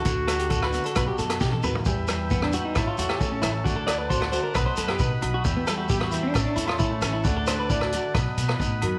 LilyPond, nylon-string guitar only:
\new Staff \with { instrumentName = "Nylon-string guitar" } { \time 4/4 \key e \minor \tempo 4 = 133 << { r8 d'8 d'8 b16 d'16 r8 b8 dis'8 fis'8 | <e g b g'>8 g8 b8 b8 r8 a8 cis'8 r8 | r8 d'8 fis'8 fis'8 r4 dis'8 fis'8 | r8 g8 b8 b8 r8 a8 cis'8 e'8 |
r8 d'8 e'16 fis'16 fis'8 r8 b8 dis'8 fis'8 | } \\ { d4. a8 b,4. dis8 | e,4. e8 a,4. e8 | d4. a8 b,4. r8 | e,4. e8 a,4. e8 |
d4. a8 b,4. dis8 | } >> }